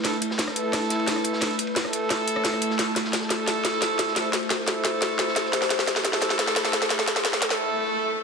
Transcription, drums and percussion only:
0.04 snare, closed hi-hat, ride
0.22 closed hi-hat, ride
0.31 snare
0.38 snare, closed hi-hat, ride
0.47 cross-stick, snare
0.56 closed hi-hat, ride
0.73 cross-stick, snare, closed hi-hat, ride
0.90 snare, closed hi-hat, ride
1.00 ride
1.07 snare, closed hi-hat, ride
1.16 cross-stick
1.24 closed hi-hat, ride
1.33 snare
1.41 snare, closed hi-hat, ride
1.59 closed hi-hat, ride
1.67 ride
1.76 snare, closed hi-hat, ride
1.85 cross-stick
1.93 closed hi-hat, ride
2.10 cross-stick, snare, closed hi-hat, ride
2.27 closed hi-hat, ride
2.36 cross-stick, ride
2.44 snare, closed hi-hat, ride
2.53 cross-stick
2.62 closed hi-hat, ride
2.70 snare
2.79 snare, closed hi-hat, ride
2.96 snare, closed hi-hat, ride
3.05 snare
3.13 snare, closed hi-hat, ride
3.22 snare
3.30 snare, closed hi-hat, ride
3.48 snare, closed hi-hat, ride
3.64 snare, closed hi-hat, ride
3.74 ride
3.81 snare, closed hi-hat, ride
3.99 snare, closed hi-hat, ride
4.07 snare
4.16 snare, closed hi-hat, ride
4.33 snare, closed hi-hat, ride
4.43 ride
4.50 snare, closed hi-hat, ride
4.67 snare, closed hi-hat, ride
4.84 snare, closed hi-hat, ride
5.02 snare, closed hi-hat, ride
5.11 ride
5.19 snare, closed hi-hat, ride
5.27 snare
5.36 snare, closed hi-hat, ride
5.45 snare
5.53 snare, closed hi-hat, ride
5.62 snare
5.70 snare, closed hi-hat, ride
5.79 snare
5.87 snare, closed hi-hat, ride
5.96 snare
6.05 snare, closed hi-hat, ride
6.13 snare
6.21 snare, closed hi-hat, ride
6.30 snare
6.39 snare, closed hi-hat, ride
6.48 snare
6.56 snare, closed hi-hat, ride
6.65 snare, ride
6.73 snare, closed hi-hat
6.82 snare, ride
6.89 snare, closed hi-hat, ride
6.99 snare
7.08 snare, closed hi-hat, ride
7.16 snare, ride
7.25 snare, closed hi-hat, ride
7.33 snare
7.42 snare, closed hi-hat
7.50 snare

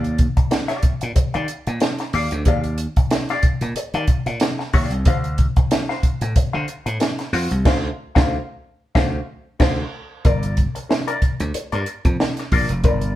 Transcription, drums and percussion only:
0.04 closed hi-hat
0.18 kick, closed hi-hat
0.37 kick, closed hi-hat
0.51 snare, closed hi-hat
0.69 snare, closed hi-hat
0.83 kick, closed hi-hat
1.01 closed hi-hat
1.16 kick, closed hi-hat
1.34 closed hi-hat
1.48 closed hi-hat
1.67 closed hi-hat
1.80 snare, closed hi-hat
1.98 snare, closed hi-hat
2.13 open hi-hat
2.31 closed hi-hat
2.45 kick, closed hi-hat
2.64 closed hi-hat
2.78 closed hi-hat
2.96 kick, closed hi-hat
3.11 snare, closed hi-hat
3.29 snare, closed hi-hat
3.43 kick, closed hi-hat
3.61 closed hi-hat
3.76 closed hi-hat
3.94 closed hi-hat
4.07 kick, closed hi-hat
4.26 closed hi-hat
4.40 snare, closed hi-hat
4.60 snare
4.73 kick, open hi-hat
4.91 closed hi-hat
5.05 kick, closed hi-hat
5.24 closed hi-hat
5.38 kick, closed hi-hat
5.56 kick, closed hi-hat
5.71 snare, closed hi-hat
5.90 snare
6.03 kick, closed hi-hat
6.21 closed hi-hat
6.36 kick, closed hi-hat
6.68 closed hi-hat
6.86 closed hi-hat
7.00 snare, closed hi-hat
7.19 snare, closed hi-hat
7.33 open hi-hat
7.51 closed hi-hat
7.65 kick, snare, crash
8.16 kick, snare
8.95 kick, snare
9.60 kick, snare, crash
10.25 kick, closed hi-hat
10.43 closed hi-hat
10.57 kick, closed hi-hat
10.76 closed hi-hat
10.91 snare
11.08 closed hi-hat
11.22 kick, closed hi-hat
11.40 closed hi-hat
11.54 closed hi-hat
11.72 closed hi-hat
11.86 closed hi-hat
12.05 kick, closed hi-hat
12.20 snare
12.37 snare, closed hi-hat
12.52 kick, open hi-hat
12.69 closed hi-hat
12.84 kick, closed hi-hat
13.01 closed hi-hat

